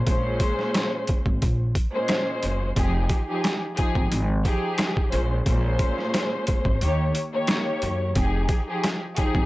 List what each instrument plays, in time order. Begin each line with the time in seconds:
0.07 upright bass A#1, string section A#2 G#3 C#4 C5, kick, closed hi-hat
0.40 kick, closed hi-hat
0.59 snare
0.74 cross-stick, snare, closed hi-hat
1.07 kick, closed hi-hat
1.26 upright bass G#1, kick
1.42 upright bass A#1, kick, closed hi-hat
1.75 kick, closed hi-hat
1.94 string section A#2 G#3 C#4 C5
2.08 cross-stick, snare, closed hi-hat
2.43 upright bass F#1, closed hi-hat
2.76 upright bass F1, string section F3 D#4 G4 G#4, kick, closed hi-hat
3.09 kick, closed hi-hat
3.29 string section F3 D#4 G4 G#4
3.44 cross-stick, snare, closed hi-hat
3.76 string section F3 D#4 G4 G#4, kick, closed hi-hat
3.95 upright bass G#1, kick
4.12 upright bass G#1, closed hi-hat
4.45 string section F3 D#4 G4 G#4, kick, closed hi-hat
4.78 cross-stick, snare, closed hi-hat
4.97 kick
5.12 upright bass A#1, string section A#2 G#3 C#4 C5, closed hi-hat
5.46 upright bass A#1, string section A#2 G#3 C#4 C5, kick, closed hi-hat
5.79 kick, closed hi-hat
5.98 snare
6.14 cross-stick, snare, closed hi-hat
6.47 kick, closed hi-hat
6.65 upright bass G#1, kick
6.81 upright bass D#2, string section D#3 A#3 G4 C#5, closed hi-hat
7.15 closed hi-hat
7.33 string section D#3 A#3 G4 C#5
7.47 cross-stick, snare, closed hi-hat
7.82 upright bass F#2, closed hi-hat
8.15 upright bass F1, string section F3 D#4 G4 G#4, kick, closed hi-hat
8.49 kick, closed hi-hat
8.68 string section F3 D#4 G4 G#4
8.84 cross-stick, snare, closed hi-hat
9.16 string section F3 D#4 G4 G#4, kick, closed hi-hat
9.35 upright bass G#1, kick